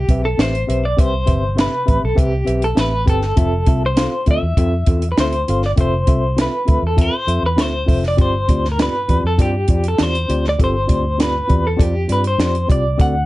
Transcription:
Already playing: G4
0.09 B1 C4 G4 B4 E5, kick, closed hi-hat
0.25 A4
0.38 A1 C4 G4 B4 C5 E5, snare, closed hi-hat
0.55 closed hi-hat
0.67 B1 C4 G4 B4 E5, closed hi-hat
0.85 D5
0.97 C2 C3 C4 G4 B4 C5 E5, kick, closed hi-hat
1.26 G1 C4 G4 B4 E5, kick, closed hi-hat
1.56 C4 G4 B4 E5, snare, closed hi-hat
1.61 B4
1.86 A1 C4 G4 B4 E5, kick, closed hi-hat
2.04 B1 A4
2.15 C2 C4 G4 B4 E5, kick, closed hi-hat
2.45 B1 C4 G4 B4 E5, closed hi-hat
2.62 A4, closed hi-hat
2.75 A1 C4 G4 B4 E5, snare, closed hi-hat
2.79 B4
3.06 G1 C4 G4 A4 B4 G5, kick, closed hi-hat
3.22 snare
3.36 F1 C4 F4 A4 E5, kick, closed hi-hat
3.66 C2 C4 F4 A4 E5, kick, closed hi-hat
3.86 C5
3.96 C4 F4 A4 F5, snare, closed hi-hat
4.26 D2 C4 F4 A4 E5, kick, closed hi-hat
4.31 E5
4.43 E2
4.57 F2 C4 F4 A4 E5, kick, closed hi-hat
4.86 E2 C4 F4 A4 E5, kick, closed hi-hat
5.02 closed hi-hat
5.12 B4
5.17 D2 C4 F4 A4 C5 E5, snare, closed hi-hat
5.33 closed hi-hat
5.48 G1 C4 F4 A4 F5, closed hi-hat
5.62 D5, snare
5.76 F1 C4 F4 A4 E5, kick, closed hi-hat
5.81 C5
6.07 C2 C4 F4 A4 E5, kick, closed hi-hat
6.37 C4 F4 A4 E5, snare, closed hi-hat
6.42 B4
6.65 D2 C4 F4 A4 E5, kick, closed hi-hat
6.83 E2
6.87 A4
6.97 C4 F4 A4 E5, kick, closed hi-hat
7.01 C5
7.27 F2 C4 F4 A4 E5, closed hi-hat
7.43 E2 B4
7.56 D2 C4 F4 A4 E5, snare, closed hi-hat
7.61 C5
7.86 F1 C4 F4 A4 E5, kick, open hi-hat
8.03 snare
8.08 D5
8.17 G1 G2 C4 F4 G4 D5, kick, closed hi-hat
8.21 C5
8.48 D2 C4 F4 G4 D5, kick, closed hi-hat
8.65 snare
8.72 A#4
8.78 C4 F4 G4 D5, snare, closed hi-hat
8.82 B4
9.08 E2 C4 F4 G4 D5, kick, closed hi-hat
9.24 F2 A4
9.38 G2 C4 F4 G4 D5, kick, closed hi-hat
9.68 F2 C4 F4 G4 D5, kick, closed hi-hat
9.84 closed hi-hat
9.88 A4
9.98 E2 C4 F4 G4 D5, snare, closed hi-hat
10.03 C5
10.15 closed hi-hat
10.29 D2 C4 F4 G4 D5, closed hi-hat
10.45 snare
10.49 D5
10.59 G1 G2 C4 F4 G4 A4, kick, closed hi-hat
10.64 C5
10.87 D2 C4 F4 G4 D5, kick, closed hi-hat
11.18 C4 F4 G4 D5, snare, closed hi-hat
11.23 B4
11.48 E2 C4 F4 G4 D5, kick, closed hi-hat
11.67 A4
11.77 F2 C4 F4 G4 D5, kick, closed hi-hat
11.83 G4
12.08 G2 C4 F4 G4 D5, closed hi-hat
12.12 B4
12.24 C5, closed hi-hat
12.38 F2 C4 F4 G4 D5, snare, closed hi-hat
12.55 closed hi-hat
12.67 C2 C4 F4 G4 D5, kick, closed hi-hat
12.72 D5
12.97 D2 D3 C4 F#4 A4 D5 F#5, kick, closed hi-hat

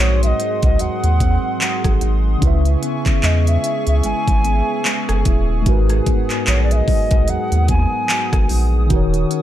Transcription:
Already playing: G#2 G#3 C4 D#4 F#4 G#4 A#4 C5 F#5 C6 D#6
0.00 A#1 F#3 C#5
0.23 E5, closed hi-hat
0.27 D#5
0.39 D#4, closed hi-hat
0.63 C2 D#5, kick, closed hi-hat
0.79 D#2 F#3 F#5, closed hi-hat
1.04 D#2, closed hi-hat
1.20 C4, kick, closed hi-hat
1.61 F#3, clap, closed hi-hat
1.84 G#1, kick, cross-stick, closed hi-hat
2.01 G#1 D#4, closed hi-hat
2.38 C#2 C#3 C#4
2.42 E4 B4 E5 G#5 C#6, kick, closed hi-hat
2.47 E5
2.65 closed hi-hat
2.82 B3, closed hi-hat
3.06 kick, clap, closed hi-hat
3.23 E2 G#3 D#5, clap, closed hi-hat
3.47 E5, closed hi-hat
3.63 E4, closed hi-hat
3.87 C#2 E5, closed hi-hat
4.03 G#1 G#3 G#5, closed hi-hat
4.28 G#1, kick, closed hi-hat
4.44 B3, closed hi-hat
4.85 G#3, clap, closed hi-hat
5.09 F#1, cross-stick, closed hi-hat
5.25 D#1 E4, kick, closed hi-hat
5.62 G#3 D#4
5.66 G#1 G#2 F#4 A#4 F#5 D#6, kick, closed hi-hat
5.72 B4
5.89 cross-stick, closed hi-hat
6.06 B3, kick, closed hi-hat
6.30 clap, closed hi-hat
6.47 A#1 F#3 C#5, clap, closed hi-hat
6.64 D5
6.71 E5, closed hi-hat
6.76 D#5
6.88 D#4, kick, open hi-hat
7.11 B1, kick, closed hi-hat
7.28 D#2 F#3 F#5, closed hi-hat
7.52 D#2, closed hi-hat
7.68 B3 G#5, kick, closed hi-hat
8.09 F#3, clap, closed hi-hat
8.33 G#1, kick, cross-stick, closed hi-hat
8.49 A#1 D#4, open hi-hat
8.87 D#1 D#3 D#4 C#6, kick, closed hi-hat
8.91 D#3 F#4 A#4
8.96 C#5
9.14 closed hi-hat
9.31 C#4, closed hi-hat

